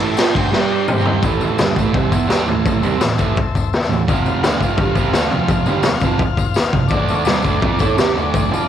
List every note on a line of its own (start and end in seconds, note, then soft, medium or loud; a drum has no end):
0.00 0.17 A2 loud
0.00 0.18 E3 medium
0.00 0.18 A3 loud
0.00 0.18 A4 medium
0.00 0.18 E5 medium
0.00 0.19 A5 medium
0.00 ride medium
0.16 0.34 F3 medium
0.16 0.35 C4 medium
0.16 0.36 F4 loud
0.16 0.52 G4 medium
0.16 0.52 C5 medium
0.16 0.53 G5 medium
0.16 snare loud
0.16 ride loud
0.16 tambourine loud
0.35 0.52 D3 medium
0.35 0.51 A3 loud
0.35 0.51 D4 loud
0.35 kick medium
0.35 ride medium
0.51 0.87 G3 medium
0.51 0.88 D4 medium
0.51 0.87 G4 medium
0.51 0.88 G4 medium
0.51 0.88 D5 medium
0.51 0.88 G5 medium
0.51 snare medium
0.88 1.22 C3 loud
0.88 1.23 G3 medium
0.88 1.24 C4 medium
0.88 1.24 G4 medium
0.88 1.21 C5 medium
0.88 1.24 G5 medium
0.88 mid tom medium
0.88 tambourine loud
1.05 floor tom medium
1.22 1.58 A2 medium
1.22 1.59 E3 medium
1.22 1.59 A3 medium
1.22 4.02 A4 medium
1.22 4.03 C5 medium
1.22 4.03 E5 medium
1.22 kick loud
1.22 floor tom medium
1.22 tambourine medium
1.41 floor tom medium
1.41 tambourine medium
1.58 1.76 G2 medium
1.58 1.76 D3 medium
1.58 1.77 G3 medium
1.58 snare loud
1.58 floor tom medium
1.58 tambourine loud
1.76 1.93 A2 medium
1.76 1.94 E3 medium
1.76 1.95 A3 loud
1.76 kick medium
1.76 floor tom medium
1.76 tambourine medium
1.93 2.10 C3 medium
1.93 2.11 G3 medium
1.93 2.11 C4 loud
1.93 kick loud
1.93 floor tom medium
1.93 tambourine soft
2.10 2.28 E3 medium
2.10 2.27 B3 medium
2.10 2.28 E4 medium
2.10 kick medium
2.10 floor tom medium
2.10 tambourine medium
2.27 2.46 G3 medium
2.27 2.46 D4 medium
2.27 2.47 G4 loud
2.27 snare medium
2.27 floor tom medium
2.27 tambourine loud
2.45 2.81 A2 medium
2.45 2.82 E3 loud
2.45 2.82 A3 loud
2.45 floor tom medium
2.45 tambourine soft
2.65 kick loud
2.65 floor tom medium
2.65 tambourine medium
2.82 2.99 C3 medium
2.82 2.99 G3 loud
2.82 3.00 C4 loud
2.82 floor tom medium
2.82 tambourine medium
2.99 3.14 A2 medium
2.99 3.14 E3 medium
2.99 snare loud
2.99 floor tom medium
2.99 tambourine loud
3.18 3.35 A2 medium
3.18 3.36 E3 medium
3.18 3.36 A3 medium
3.18 kick medium
3.18 floor tom medium
3.18 tambourine medium
3.36 kick loud
3.36 floor tom medium
3.36 tambourine soft
3.55 kick medium
3.55 floor tom medium
3.55 tambourine medium
3.73 snare loud
3.73 floor tom medium
3.73 tambourine loud
3.89 4.04 A2 medium
3.89 4.04 E3 medium
3.89 floor tom medium
3.89 tambourine soft
4.07 4.42 F2 medium
4.07 4.42 C3 medium
4.07 4.43 F3 medium
4.07 6.89 F4 medium
4.07 6.88 C5 medium
4.07 6.88 F5 medium
4.07 kick loud
4.07 floor tom medium
4.07 tambourine medium
4.26 floor tom medium
4.26 tambourine medium
4.43 4.60 D3 medium
4.43 4.60 A3 loud
4.43 4.61 D4 medium
4.43 snare loud
4.43 floor tom medium
4.43 tambourine medium
4.61 4.78 F2 medium
4.61 4.78 C3 medium
4.61 4.79 F3 loud
4.61 kick medium
4.61 floor tom medium
4.61 tambourine medium
4.77 4.96 G2 medium
4.77 4.96 D3 loud
4.77 4.96 G3 loud
4.77 kick loud
4.77 floor tom medium
4.77 tambourine soft
4.95 5.13 C3 medium
4.95 5.14 G3 medium
4.95 5.14 C4 loud
4.95 kick medium
4.95 floor tom medium
4.95 tambourine medium
5.13 5.31 D3 medium
5.13 5.31 A3 medium
5.13 5.32 D4 medium
5.13 snare loud
5.13 floor tom medium
5.13 tambourine loud
5.31 5.66 F2 medium
5.31 5.67 C3 loud
5.31 5.67 F3 loud
5.31 floor tom medium
5.31 tambourine soft
5.48 kick loud
5.48 floor tom medium
5.48 tambourine medium
5.66 5.84 G2 medium
5.66 5.85 D3 medium
5.66 5.85 G3 loud
5.66 floor tom medium
5.66 tambourine medium
5.83 5.99 F2 medium
5.83 5.99 C3 medium
5.83 snare loud
5.83 floor tom medium
5.83 tambourine loud
6.01 6.20 F2 medium
6.01 6.20 C3 medium
6.01 kick medium
6.01 floor tom medium
6.01 tambourine medium
6.05 6.21 F3 medium
6.19 kick loud
6.19 floor tom medium
6.19 tambourine soft
6.37 kick medium
6.37 floor tom medium
6.37 tambourine medium
6.54 snare medium
6.54 floor tom medium
6.54 tambourine loud
6.73 6.87 F2 medium
6.73 6.88 C3 medium
6.73 kick medium
6.73 floor tom medium
6.88 7.24 D3 medium
6.88 7.25 A3 medium
6.88 8.68 D4 medium
6.88 8.68 A4 medium
6.88 8.68 D5 medium
6.88 kick loud
6.88 floor tom medium
6.88 tambourine medium
6.92 7.27 D4 loud
7.09 floor tom medium
7.09 tambourine medium
7.25 7.43 C3 medium
7.25 7.43 G3 medium
7.25 7.44 C4 loud
7.25 snare loud
7.25 floor tom medium
7.25 tambourine loud
7.42 7.61 D3 medium
7.42 7.62 A3 medium
7.42 7.62 D4 medium
7.42 kick medium
7.42 floor tom medium
7.42 tambourine medium
7.60 7.79 F3 medium
7.60 7.79 C4 medium
7.60 7.80 F4 medium
7.60 kick loud
7.60 floor tom medium
7.60 tambourine soft
7.79 7.96 A3 medium
7.79 7.97 E4 medium
7.79 7.98 A4 medium
7.79 kick medium
7.79 floor tom medium
7.79 tambourine medium
7.97 8.14 C4 medium
7.97 8.15 G4 medium
7.97 8.16 C5 medium
7.97 snare loud
7.97 floor tom medium
7.97 tambourine loud
8.14 8.50 D3 medium
8.14 8.50 A3 medium
8.14 8.51 D4 loud
8.14 floor tom medium
8.14 tambourine soft
8.34 kick loud
8.34 floor tom medium
8.34 tambourine medium
8.50 8.68 F3 medium
8.50 8.68 C4 medium
8.50 8.68 F4 medium
8.50 floor tom medium
8.50 tambourine medium